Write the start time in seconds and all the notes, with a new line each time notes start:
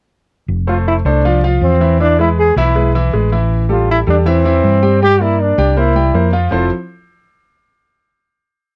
0.48 F1
0.67 A3 F4 A4 C5
0.88 E4
1.05 C2 A3 D4 A4 C5
1.25 F3 F4 F5
1.44 F3 F4 F5
1.61 E2 C4
1.81 E3 E4 E5
2.00 E3 D4 E4 E5
2.19 G#3 E4 G#4 B4
2.39 G#4
2.56 B1 E3 E4 E5
2.75 G#3 G#4 B4
2.95 E3 E4 E5
3.13 A1 G#3 G#4 B4
3.32 E3 E4 E5
3.69 G3 F4 G4 A4
3.91 E4
4.07 E2 G3 D4 G4 A4
4.26 E3 C4 E4 E5
4.45 E3 E4 E5
4.64 G2
4.82 G3 G4 G5
5.02 G3 G4 G5
5.21 A#3 E4 A#4 D5
5.42 D4
5.58 C2 G3 G4 G5
5.77 A#3 E4 A#4 C5
5.95 G3 G4 G5
6.14 F2 A#3 A#4 C5
6.33 F3 F4 F5
6.51 F1 F3 C4 E4 F4 A4 C5